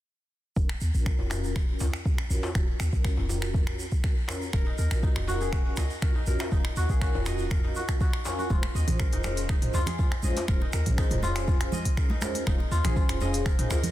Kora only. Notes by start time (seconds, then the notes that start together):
4.54 A#4
4.67 D#4
4.78 A#4
5.03 D#4
5.28 F#4
5.41 G#4
5.53 F#4
5.78 D#5
6.02 A#4
6.15 D#4
6.27 A#4
6.52 D#4
6.77 F#4
6.90 G#4
7.02 F#4
7.27 D#5
7.51 A#4
7.64 D#4
7.76 F#4
8.01 F#4
8.26 C#4
8.39 F#4
8.51 F4
8.75 D#5
9.00 A#4
9.13 D#4
9.25 A#4
9.50 D#4
9.74 F4
9.87 G#4
9.99 F4
10.24 D#5
10.49 A#4
10.62 D#4
10.74 A#4
10.98 D#4
11.23 F4
11.36 G#4
11.48 F4
11.73 D#5
11.97 A#4
12.10 D#4
12.22 A#4
12.47 D#4
12.72 F4
12.84 G#4
12.96 F4
13.21 D#5
13.46 A#4
13.59 D#4
13.71 A#4